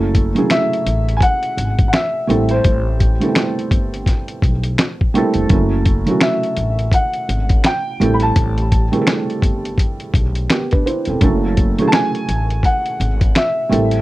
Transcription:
Already playing: F#1 F#3 A3 C#4 E4 A4
0.15 kick, closed hi-hat
0.35 F#3 A3 C#4 E4 G#4, closed hi-hat
0.50 E5, finger snap, snare, closed hi-hat
0.73 closed hi-hat
0.86 A1, closed hi-hat
1.09 closed hi-hat
1.17 G#5, kick
1.22 F#5, closed hi-hat
1.43 closed hi-hat
1.57 G#1, closed hi-hat
1.79 kick, closed hi-hat
1.88 F#5
1.93 E5, finger snap, snare, closed hi-hat
2.27 A1 G3 A3 C4 E4 A4, closed hi-hat
2.49 C5, closed hi-hat
2.64 A1, kick, closed hi-hat
3.00 kick, closed hi-hat
3.20 G3 A3 B3 E4 A4, closed hi-hat
3.28 C4
3.35 finger snap, snare, closed hi-hat
3.59 closed hi-hat
3.71 G1, kick, closed hi-hat
3.94 closed hi-hat
4.06 kick, snare, closed hi-hat
4.28 closed hi-hat
4.42 B1, kick, closed hi-hat
4.64 closed hi-hat
4.78 finger snap, snare, closed hi-hat
5.01 kick
5.14 G3 A3 C4 E4 A4, closed hi-hat
5.34 E1, closed hi-hat
5.50 F#1 F#3 A3 C#4 E4 A4, kick, closed hi-hat
5.86 kick, closed hi-hat
6.06 F#3 A3 C#4 E4 F#4, closed hi-hat
6.21 E5, finger snap, snare, closed hi-hat
6.44 closed hi-hat
6.57 A1, closed hi-hat
6.79 closed hi-hat
6.92 F#5, kick, closed hi-hat
7.14 closed hi-hat
7.29 G#1, closed hi-hat
7.49 kick, closed hi-hat
7.64 G5, finger snap, snare, closed hi-hat
8.00 A1 G3 A3 C4 E4 A4, closed hi-hat
8.14 B5
8.20 A5, closed hi-hat
8.36 A1, kick, closed hi-hat
8.58 closed hi-hat
8.72 kick, closed hi-hat
8.92 G3 A3 C4 E4 G#4, closed hi-hat
9.01 A4
9.07 finger snap, snare, closed hi-hat
9.30 closed hi-hat
9.42 G1, kick, closed hi-hat
9.65 closed hi-hat
9.78 kick, closed hi-hat
10.00 closed hi-hat
10.14 B1, kick, closed hi-hat
10.35 closed hi-hat
10.50 B3 G4, finger snap, snare, closed hi-hat
10.71 D4 B4, kick, closed hi-hat
10.86 E4 C5, closed hi-hat
11.05 E1 A4, closed hi-hat
11.09 C4
11.21 F#1 F#3 A3 C#4 E4 A4, kick, closed hi-hat
11.57 kick, closed hi-hat
11.78 F#3 A3 C#4 E4 G#4, closed hi-hat
11.88 A5
11.92 G#5, finger snap, snare, closed hi-hat
12.15 closed hi-hat
12.29 A1, closed hi-hat
12.50 closed hi-hat
12.63 F#5, kick, closed hi-hat
12.86 closed hi-hat
13.00 G#1, closed hi-hat
13.21 kick, closed hi-hat
13.35 E5, finger snap, snare, closed hi-hat
13.69 A1 G3 A3 C4 E4 A4, closed hi-hat
13.91 closed hi-hat

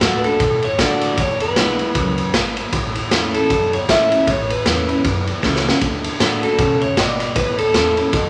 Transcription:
0.01 A2 D3 A3 D4 F#4, snare, ride
0.17 B4
0.24 D4 F#4 A4, ride
0.40 A2 B2, kick, ride
0.62 C#5, ride
0.79 D3 A3 D4 F#4 D5, kick, snare, ride
1.01 snare, ride
1.17 E1 E2 C#5, kick, ride
1.40 B4, ride
1.56 B1 D3 G#3 B3 E4, snare, ride
1.79 B3 E4, ride
1.95 C#2 F#2, kick, ride
2.18 ride
2.34 G#1 G#2, kick, snare, ride
2.57 ride
2.73 A1 A2, kick, ride
2.95 ride
3.11 E2 E3 A3 C#4 E4, snare, ride
3.34 C#4 E4 A4, ride
3.50 E2 F#2, kick, ride
3.73 C#5, ride
3.89 A2 E3 A3 C#4 E4 E5, kick, snare, ride
4.11 C#4 E4, ride
4.27 A1 A2 C#5, kick, ride
4.50 B4, ride
4.66 E2 E3 A3 C#4 E4, snare, ride
4.88 C#4 E4, ride
5.05 E2 F#2, kick, ride
5.27 ride
5.42 C#2 E3 A3 C#4 E4, kick, snare
5.56 snare
5.66 C#4 E4, snare
5.81 D2 D3, kick, ride
6.04 ride
6.20 A2 D3 A3 D4 F#4, snare, ride
6.43 D4 F#4 A4, ride
6.59 B2 C#3, kick, ride
6.81 C#5, ride
6.97 G#1 B2 D5, kick, snare, ride
7.20 snare, ride
7.36 A1 A2 B4, kick, ride
7.58 A4, ride
7.74 E2 E3 A3 C#4 E4, snare, ride
7.97 C#4 E4, ride
8.13 F#2 B2, kick, ride

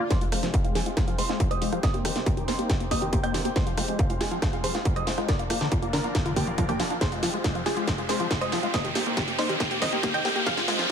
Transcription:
Already playing: swell
0.10 F3 G#3 C4 F4 G4 G#4 C5 C6, kick, snare, closed hi-hat, riser
0.21 G#3 F4 F5, closed hi-hat
0.32 F1 G#3 F4 F5, cross-stick, open hi-hat
0.43 F1 F3, snare, closed hi-hat
0.54 G#3 F4 F5, kick, closed hi-hat
0.64 G#3 F4 F5, closed hi-hat
0.75 F1 F3 F4 G#4 G#5, snare, open hi-hat
0.86 G#3 F4 F5, closed hi-hat
0.97 G#3 F4 F5, kick, cross-stick, snare, closed hi-hat
1.08 F3 F4 F5, closed hi-hat
1.18 F1 G#3 G#4 C5 C6, open hi-hat
1.29 G#3 F4 F5, snare, closed hi-hat
1.40 F3 F4 F5, kick, closed hi-hat
1.51 G#3 C5 D#5 D#6, closed hi-hat
1.62 F1 G#3 F4 F5, open hi-hat
1.72 F3 F4 F5, cross-stick, closed hi-hat
1.83 A#3 D#4 C5 D#5 D#6, kick, snare, closed hi-hat
1.94 A#3 G4 G5, closed hi-hat
2.05 C2 D#3 G4 G5, cross-stick, open hi-hat
2.16 C2 A#3, snare, closed hi-hat
2.26 A#3 G4 G5, kick, closed hi-hat
2.37 D#3 G4 G5, closed hi-hat
2.48 C2 A#3 D#4 C5 C6, snare, open hi-hat
2.59 A#3 G4 G5, closed hi-hat
2.69 D#3 G4 G5, kick, snare, closed hi-hat
2.80 A#3 G4 G5, closed hi-hat
2.91 C2 A#3 C5 D#5 D#6, kick, cross-stick, open hi-hat
3.02 D#3 G4 G5, closed hi-hat
3.13 A#3 G4 G5, kick, closed hi-hat
3.23 A#3 D#5 G5 G6, closed hi-hat
3.34 C2 D#3 G4 G5, snare, open hi-hat
3.45 A#3 G4 G5, closed hi-hat
3.56 G#3 F4 G#4 C5 C6, kick, snare, closed hi-hat
3.67 F3 F4 F5, closed hi-hat
3.77 F1 G#3 F4 F5, cross-stick, open hi-hat
3.88 F1 G#3, closed hi-hat
3.99 F3 F4 F5, kick, closed hi-hat
4.10 G#3 F4 F5, closed hi-hat
4.21 F1 G#3 F4 G#4 G#5, snare, open hi-hat
4.31 F3 F4 F5, closed hi-hat
4.42 G#3 F4 F5, kick, cross-stick, snare, closed hi-hat
4.53 G#3 F4 F5, closed hi-hat
4.64 F1 F3 G#4 C5 C6, open hi-hat
4.75 G#3 F4 F5, snare, closed hi-hat
4.85 G#3 F4 F5, kick, closed hi-hat
4.96 F3 C5 D#5 D#6, closed hi-hat
5.07 F1 G#3 F4 F5, snare, open hi-hat
5.18 G#3 F4 F5, cross-stick, closed hi-hat
5.28 D3 F3 A#3 D4 A#4 D5 D6, kick, snare, closed hi-hat
5.39 A#3 F4 F5, closed hi-hat
5.50 A#1 A#3 F4 F5, cross-stick, open hi-hat
5.61 A#1 D3, snare, closed hi-hat
5.72 A#3 F4 F5, kick, closed hi-hat
5.82 A#3 F4 F5, closed hi-hat
5.93 A#1 D3 D4 A#4 A#5, snare, open hi-hat
6.04 A#3 F4 F5, closed hi-hat
6.15 A#3 F4 F5, kick, snare, closed hi-hat
6.26 D3 F4 F5, closed hi-hat
6.36 A#1 D3 A#3 G4 G5, kick, cross-stick, open hi-hat
6.47 F3 F4 F5, closed hi-hat
6.58 F3 F4 F5, kick, closed hi-hat
6.69 F3 A#3 G4 G5, closed hi-hat
6.80 A#1 F3 F4 F5, snare, open hi-hat
6.90 D4 F4 F5, closed hi-hat
7.01 G#3 C4 F4 G4 G#4 C5 C6, kick, snare, closed hi-hat
7.12 G#3 F4 F5, closed hi-hat
7.23 F1 F3 F4 F5, snare, open hi-hat
7.34 F1 G#3, closed hi-hat
7.44 G#3 F4 F5, kick, snare, closed hi-hat
7.55 F3 F4 F5, closed hi-hat
7.66 F1 G#3 F4 G#4 G#5, snare, open hi-hat
7.77 G#3 F4 F5, closed hi-hat
7.87 F3 F4 F5, kick, snare, closed hi-hat
7.98 G#3 F4 F5, closed hi-hat
8.09 F1 G#3 G#4 C5 C6, snare, open hi-hat
8.20 F3 F4 F5, closed hi-hat
8.31 G#3 F4 F5, kick, snare, closed hi-hat
8.41 G#3 C5 D#5 D#6, closed hi-hat
8.52 F1 F3 F4 F5, snare, open hi-hat
8.63 G#3 F4 F5, closed hi-hat
8.74 A#3 D#4 G4 C5 D#5 D#6, kick, snare, closed hi-hat
8.85 D#3 G4 G5, closed hi-hat
8.95 C2 A#3 G4 G5, snare, open hi-hat
9.06 C2 A#3, closed hi-hat
9.17 D#3 G4 G5, kick, snare, closed hi-hat
9.28 A#3 G4 G5, closed hi-hat
9.39 C2 A#3 D#4 C5 C6, snare, open hi-hat
9.49 D#3 G4 G5, closed hi-hat
9.60 A#3 G4 G5, kick, snare, closed hi-hat
9.71 A#3 G4 G5, closed hi-hat
9.82 C2 D#3 C5 D#5 D#6, kick, snare, open hi-hat
9.93 A#3 G4 G5
10.03 A#3 G4, kick, snare, closed hi-hat
10.14 D#3 D#5 G5 G6, closed hi-hat
10.25 C2 A#3 G4 G5, snare, open hi-hat
10.36 A#3 G4 G5, closed hi-hat
10.46 F3 G#3 F4 G#4 F5 F6, kick, snare, closed hi-hat
10.57 G#3 F4 F5, snare, closed hi-hat
10.68 F1 G#3 F4 F5, snare, open hi-hat
10.79 F1 F3, snare, closed hi-hat

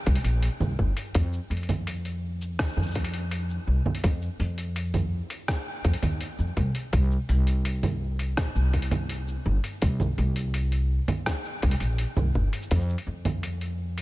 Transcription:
0.06 C2, kick, open hi-hat
0.15 open hi-hat
0.24 A#1, open hi-hat, shaker
0.43 open hi-hat, shaker
0.60 C2, low conga, shaker
0.79 G1, kick
0.97 open hi-hat, shaker
1.15 F2, kick, open hi-hat, shaker
1.33 shaker
1.50 F2, open hi-hat
1.57 open hi-hat
1.63 open hi-hat
1.69 open hi-hat, low conga, shaker
1.87 open hi-hat, shaker
2.05 open hi-hat, shaker
2.41 shaker
2.59 D#2, kick, cross-stick, open hi-hat, shaker
2.64 shaker
2.68 shaker
2.73 F2, shaker
2.77 low conga, shaker
2.82 shaker
2.86 shaker
2.91 shaker
2.95 kick, open hi-hat
3.04 open hi-hat
3.14 open hi-hat
3.31 open hi-hat, shaker
3.50 shaker
3.67 C2
3.86 low conga
3.95 open hi-hat
4.04 F2, kick, open hi-hat, shaker
4.22 shaker
4.40 F2, open hi-hat
4.58 open hi-hat, shaker
4.76 open hi-hat, shaker
4.94 open hi-hat, low conga, shaker
5.30 open hi-hat, shaker
5.48 kick, cross-stick, open hi-hat, shaker
5.84 F2, kick, open hi-hat
5.93 open hi-hat
6.02 D#2, open hi-hat, low conga, shaker
6.21 open hi-hat, shaker
6.39 F2, shaker
6.57 C2, kick, open hi-hat
6.75 open hi-hat, shaker
6.93 C2, kick, open hi-hat, shaker
7.11 shaker
7.29 C2, open hi-hat
7.47 open hi-hat, shaker
7.65 open hi-hat, shaker
7.83 open hi-hat, low conga, shaker
8.19 open hi-hat, shaker
8.37 A#1, kick, cross-stick, open hi-hat, shaker
8.55 C2, shaker
8.73 kick, open hi-hat
8.82 open hi-hat
8.91 open hi-hat, low conga, shaker
9.09 open hi-hat, shaker
9.28 shaker
9.46 G1
9.64 open hi-hat, shaker
9.82 C2, kick, open hi-hat, shaker
10.00 low conga, shaker
10.18 C2, open hi-hat
10.36 open hi-hat, shaker
10.54 open hi-hat, shaker
10.72 open hi-hat, shaker
11.08 open hi-hat, low conga
11.26 kick, cross-stick, open hi-hat, shaker
11.44 shaker
11.62 C2, kick, open hi-hat
11.71 open hi-hat
11.80 A#1, open hi-hat, shaker
11.98 open hi-hat, shaker
12.17 C2, low conga, shaker
12.35 G1, kick
12.53 open hi-hat, shaker
12.62 shaker
12.71 F2, kick, open hi-hat, shaker
12.80 shaker
12.89 shaker
12.98 open hi-hat
13.07 F2
13.25 open hi-hat, low conga
13.43 open hi-hat, shaker
13.61 open hi-hat, shaker
13.98 open hi-hat, shaker

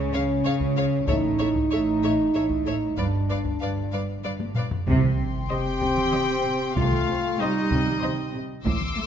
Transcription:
Already playing: C#2 C#3 C#4
0.13 C#3 G#4 C#5 F5
0.45 C#2 C#3 G#4 C#5 F5
0.60 taiko
0.76 C#3 G#4 C#5 F5
1.07 A1 A2 D#4 A4 C#5 E5, taiko
1.39 A3 A4 C#5 E5
1.55 taiko
1.71 A1 A2 A4 C#5 E5
2.03 A2 A4 C#5 E5
2.34 A1 A2 A4 C#5 E5
2.50 taiko
2.66 A2 A4 C#5 E5
2.97 G1 G2 D4 B4 D5 F5, taiko
3.29 G3 B4 D5 F5
3.45 taiko
3.61 G1 G2 B4 D5 F5
3.92 G2 B4 D5 F5
4.24 G1 G2 B4 D5 F5
4.40 taiko high
4.55 G2 B4 D5 F5, taiko low-mid
4.71 taiko low
4.87 C2 C3 G5 C6, taiko, sub drop
5.03 taiko mid
5.19 C4
5.50 C3 C4 G4 C5 D#5 G5
5.81 C3, taiko
5.97 taiko mid
6.13 C3 C5 D#5, taiko mid
6.46 C3
6.76 C2 C3 A3 F4 F5, taiko
6.92 taiko mid
6.98 C#6
7.09 C4
7.40 C3 G3 D#4 C5 D#5
7.71 C3, taiko
7.87 taiko mid
8.03 C3 C5 D#5, taiko mid
8.34 C3
8.66 A1 A2 C6 D6 E6, taiko
8.81 taiko mid
8.99 A3

